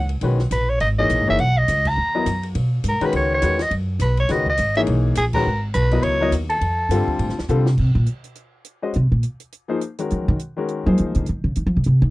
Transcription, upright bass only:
Already playing: C#2
0.21 B1
0.51 A#1
0.81 G#1
1.10 A#1
1.20 G#1
1.30 F#1
1.39 B1
1.68 C#2
1.97 D#2
2.26 F#2
2.55 B2
2.84 G#2
3.01 muted upright bass stroke
3.13 C#2
3.42 E2
3.71 F#2
3.99 B1
4.30 C#2
4.59 G#1
4.88 B1
5.17 A#1
5.47 G#1
5.75 B1
6.03 C#2
6.31 D#2
6.61 F2
6.89 G2
7.08 muted upright bass stroke
7.19 A2
7.29 F2
7.39 D#2
7.49 C3
7.79 C3
7.95 A#2
8.96 C3
9.12 A#2
10.12 F3
10.28 D#3
10.86 F#3
11.00 F3
11.16 D3
11.29 D#3
11.44 C#3
11.57 D#3
11.67 F3
11.76 C#3
11.86 C3
12.02 D#3

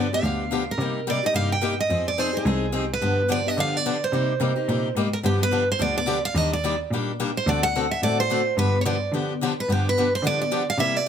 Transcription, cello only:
Already playing: G2
0.22 D2
0.78 C3
1.34 G2
1.90 F2
2.45 C2
3.02 G2
3.58 D3
4.13 C3
4.40 C3
4.69 A#2
4.96 G#2
5.24 G2
5.80 D2
6.35 D#2
6.91 A#2
7.47 D2
8.02 A2
8.58 G2
9.12 D3
9.68 G2
10.23 D3
10.78 C3

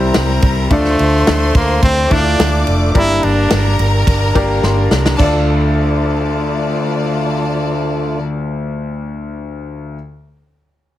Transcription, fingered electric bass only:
0.16 C2
0.43 C2
0.71 D2
1.00 D2
1.28 D2
1.55 D2
1.83 D2
2.11 D2
2.39 D2
2.68 F1
2.95 G1
3.24 G1
3.52 G1
3.79 G1
4.08 G1
4.36 G1
4.63 G1
4.91 C2
5.20 D2

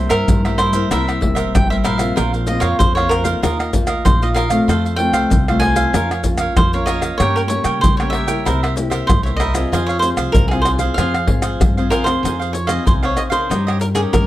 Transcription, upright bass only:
0.10 G2
0.29 G2
0.92 C2
1.21 E1
1.55 G1
1.85 A#1
2.18 A#1
2.62 F2
2.80 F2
3.42 D#2
4.05 A#1
4.68 F2
5.12 C2
5.30 C2
5.93 F2
6.56 F2
7.20 G2
7.65 C#3
7.84 C#3
8.47 C2
9.10 C2
9.72 F2
10.17 C2
10.35 C2
10.97 F2
11.27 G#2
11.60 G2
11.90 F2
12.23 F2
12.87 C2
13.50 G2
14.13 G2

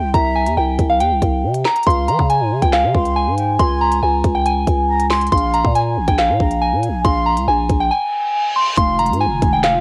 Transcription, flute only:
Already playing: G5
0.14 E5
1.87 F5
2.30 G#5
2.95 C6
3.38 G5
3.59 G#5
4.89 A#5
5.10 G#5
5.32 F5
5.75 G#5
6.40 A#5
6.83 G#5
7.05 F5
8.77 F5
9.20 G#5

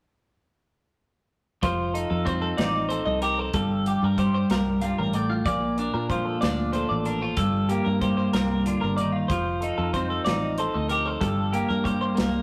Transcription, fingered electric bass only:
1.63 F1
2.11 F2
2.59 A1
3.07 C2
3.54 G1
4.03 G2
4.51 C2
4.99 A1
5.46 A#1
5.94 A#2
6.43 D2
6.91 A1
7.38 G1
7.86 G2
8.34 C2
8.83 G1
9.30 F1
9.78 F2
10.27 A1
10.75 D2
11.22 G1
11.70 G2
12.18 C2

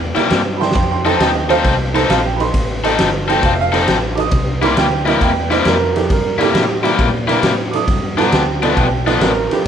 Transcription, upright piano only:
0.57 G5 B5
0.61 C6
0.75 G5 C6
0.91 G5 C6
1.05 D#5 G5
1.21 D#5 G5
1.35 D#5 G5
1.50 C5 F5
2.10 F5
2.26 G5
2.37 B5
2.41 C6
3.31 G5
3.45 F5
3.56 E5
3.61 F5
4.16 D6
4.20 D#6
4.64 C6
4.78 G5
5.08 D#5
5.22 G5
5.53 D#5
5.67 A#4
5.97 G4
6.12 A#4
6.42 G4
7.71 D6
7.76 D#6
8.20 A#5
8.34 G5
8.65 D#5
8.78 G5
9.07 D#5
9.22 A#4
9.52 G4

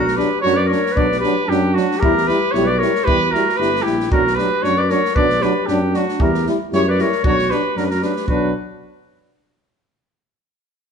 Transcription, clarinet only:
Already playing: F#4
0.17 G4
0.42 F#4
0.55 B4
0.66 A#4
0.91 B4
1.19 G4
1.45 D4
1.73 D4
1.97 G4
2.25 G4
2.52 G4
2.64 B4
2.78 A#4
3.04 G4
3.30 F#4
3.58 G4
3.82 E4
4.11 F#4
4.37 G4
4.63 F#4
4.78 B4
4.89 A#4
5.15 B4
5.41 G4
5.68 D4
5.95 D4
6.21 G4
6.76 G4
6.88 B4
7.00 A#4
7.24 F#4
7.51 G4
7.77 F#4
7.84 G4
7.91 F#4
8.02 G4
8.27 F#4

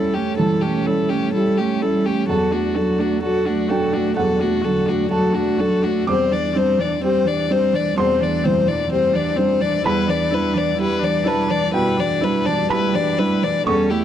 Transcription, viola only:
Already playing: E4
0.15 C#4
0.38 E4
0.63 C#4
0.86 E4
1.10 C#4
1.35 E4
1.59 C#4
1.81 E4
2.06 C#4
2.27 F#4
2.52 D4
2.75 F#4
2.99 D4
3.22 F#4
3.45 D4
3.69 F#4
3.93 D4
4.16 F#4
4.39 D4
4.62 F#4
4.86 D4
5.10 F#4
5.33 D4
5.58 F#4
5.83 D4
6.08 C4
6.31 D4
6.55 C4
6.79 D4
7.03 C4
7.27 D4
7.50 C4
7.74 D4
7.98 C4
8.20 D4
8.43 C4
8.67 D4
8.90 C4
9.13 D4
9.36 C4
9.61 D4
9.83 E4
10.08 D4
10.31 E4
10.53 D4
10.77 E4
10.99 D4
11.25 E4
11.48 D4
11.73 E4
11.97 D4
12.21 E4
12.46 D4
12.71 E4
12.94 D4
13.18 E4
13.44 D4
13.66 C#4
13.91 E4

